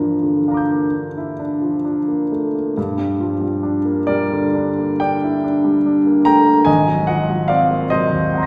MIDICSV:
0, 0, Header, 1, 2, 480
1, 0, Start_track
1, 0, Tempo, 921659
1, 1442, Tempo, 890208
1, 1443, Time_signature, 9, 3, 24, 8
1, 2882, Tempo, 826446
1, 4639, End_track
2, 0, Start_track
2, 0, Title_t, "Grand piano"
2, 0, Program_c, 0, 0
2, 0, Control_c, 0, 64, 127
2, 0, Note_on_c, 0, 43, 39
2, 0, Note_on_c, 0, 52, 28
2, 0, Note_on_c, 0, 53, 32
2, 0, Note_on_c, 0, 58, 31
2, 0, Note_on_c, 0, 62, 33
2, 0, Note_on_c, 0, 70, 53
2, 75, Note_off_c, 0, 58, 0
2, 121, Note_on_c, 0, 50, 27
2, 196, Note_off_c, 0, 53, 0
2, 249, Note_on_c, 0, 77, 26
2, 251, Note_off_c, 0, 62, 0
2, 251, Note_on_c, 0, 62, 33
2, 267, Note_on_c, 0, 82, 26
2, 282, Note_on_c, 0, 86, 25
2, 297, Note_on_c, 0, 91, 25
2, 319, Note_off_c, 0, 50, 0
2, 370, Note_on_c, 0, 58, 28
2, 444, Note_off_c, 0, 62, 0
2, 494, Note_on_c, 0, 62, 29
2, 562, Note_off_c, 0, 58, 0
2, 613, Note_on_c, 0, 64, 30
2, 682, Note_off_c, 0, 62, 0
2, 726, Note_on_c, 0, 62, 32
2, 729, Note_off_c, 0, 64, 0
2, 841, Note_on_c, 0, 53, 35
2, 917, Note_off_c, 0, 62, 0
2, 963, Note_on_c, 0, 62, 33
2, 1036, Note_off_c, 0, 53, 0
2, 1084, Note_on_c, 0, 58, 31
2, 1158, Note_off_c, 0, 62, 0
2, 1202, Note_off_c, 0, 70, 0
2, 1207, Note_on_c, 0, 57, 29
2, 1280, Note_off_c, 0, 58, 0
2, 1326, Note_on_c, 0, 58, 27
2, 1328, Note_off_c, 0, 57, 0
2, 1419, Note_off_c, 0, 43, 0
2, 1422, Note_off_c, 0, 77, 0
2, 1431, Note_off_c, 0, 82, 0
2, 1439, Note_off_c, 0, 86, 0
2, 1442, Note_off_c, 0, 58, 0
2, 1445, Note_on_c, 0, 43, 52
2, 1447, Note_off_c, 0, 91, 0
2, 1452, Control_c, 0, 64, 0
2, 1458, Note_off_c, 0, 52, 0
2, 1544, Control_c, 0, 64, 127
2, 1558, Note_on_c, 0, 55, 37
2, 1675, Note_on_c, 0, 53, 37
2, 1744, Note_off_c, 0, 55, 0
2, 1788, Note_on_c, 0, 55, 39
2, 1791, Note_off_c, 0, 53, 0
2, 1907, Note_on_c, 0, 62, 43
2, 1980, Note_off_c, 0, 55, 0
2, 2027, Note_on_c, 0, 58, 42
2, 2103, Note_off_c, 0, 62, 0
2, 2142, Note_on_c, 0, 74, 75
2, 2147, Note_on_c, 0, 70, 57
2, 2153, Note_on_c, 0, 55, 40
2, 2228, Note_off_c, 0, 58, 0
2, 2282, Note_on_c, 0, 50, 36
2, 2355, Note_off_c, 0, 55, 0
2, 2403, Note_on_c, 0, 62, 39
2, 2482, Note_off_c, 0, 50, 0
2, 2529, Note_on_c, 0, 58, 37
2, 2602, Note_off_c, 0, 62, 0
2, 2626, Note_off_c, 0, 70, 0
2, 2643, Note_off_c, 0, 74, 0
2, 2644, Note_on_c, 0, 79, 72
2, 2651, Note_on_c, 0, 74, 51
2, 2653, Note_on_c, 0, 62, 38
2, 2721, Note_off_c, 0, 58, 0
2, 2773, Note_on_c, 0, 64, 39
2, 2838, Note_off_c, 0, 62, 0
2, 2883, Note_on_c, 0, 62, 38
2, 2885, Note_off_c, 0, 64, 0
2, 3002, Note_on_c, 0, 55, 41
2, 3076, Note_off_c, 0, 62, 0
2, 3128, Note_on_c, 0, 62, 41
2, 3195, Note_off_c, 0, 55, 0
2, 3245, Note_on_c, 0, 58, 42
2, 3316, Note_off_c, 0, 62, 0
2, 3338, Note_off_c, 0, 74, 0
2, 3351, Note_off_c, 0, 79, 0
2, 3353, Note_on_c, 0, 82, 83
2, 3359, Note_on_c, 0, 79, 60
2, 3364, Note_on_c, 0, 57, 37
2, 3434, Note_off_c, 0, 58, 0
2, 3476, Note_on_c, 0, 58, 39
2, 3481, Note_off_c, 0, 57, 0
2, 3576, Note_off_c, 0, 43, 0
2, 3580, Note_off_c, 0, 79, 0
2, 3583, Note_on_c, 0, 80, 87
2, 3593, Note_on_c, 0, 75, 63
2, 3594, Note_off_c, 0, 82, 0
2, 3595, Note_on_c, 0, 32, 53
2, 3596, Note_off_c, 0, 58, 0
2, 3609, Control_c, 0, 64, 0
2, 3705, Control_c, 0, 64, 127
2, 3717, Note_on_c, 0, 54, 37
2, 3816, Note_off_c, 0, 75, 0
2, 3828, Note_off_c, 0, 80, 0
2, 3830, Note_on_c, 0, 78, 73
2, 3836, Note_on_c, 0, 75, 56
2, 3840, Note_on_c, 0, 53, 34
2, 3908, Note_off_c, 0, 54, 0
2, 3956, Note_on_c, 0, 54, 38
2, 3958, Note_off_c, 0, 53, 0
2, 4060, Note_off_c, 0, 75, 0
2, 4066, Note_on_c, 0, 77, 77
2, 4074, Note_off_c, 0, 78, 0
2, 4074, Note_on_c, 0, 74, 55
2, 4075, Note_on_c, 0, 60, 43
2, 4150, Note_off_c, 0, 54, 0
2, 4198, Note_on_c, 0, 58, 39
2, 4271, Note_off_c, 0, 60, 0
2, 4302, Note_off_c, 0, 74, 0
2, 4312, Note_on_c, 0, 75, 79
2, 4315, Note_off_c, 0, 77, 0
2, 4320, Note_on_c, 0, 72, 59
2, 4325, Note_on_c, 0, 54, 42
2, 4393, Note_off_c, 0, 58, 0
2, 4442, Note_on_c, 0, 39, 34
2, 4517, Note_off_c, 0, 54, 0
2, 4566, Note_on_c, 0, 60, 40
2, 4566, Note_on_c, 0, 78, 35
2, 4585, Note_on_c, 0, 82, 34
2, 4600, Note_on_c, 0, 84, 35
2, 4618, Note_on_c, 0, 94, 34
2, 4635, Note_off_c, 0, 39, 0
2, 4639, Note_off_c, 0, 32, 0
2, 4639, Note_off_c, 0, 60, 0
2, 4639, Note_off_c, 0, 72, 0
2, 4639, Note_off_c, 0, 75, 0
2, 4639, Note_off_c, 0, 78, 0
2, 4639, Note_off_c, 0, 82, 0
2, 4639, Note_off_c, 0, 84, 0
2, 4639, Note_off_c, 0, 94, 0
2, 4639, End_track
0, 0, End_of_file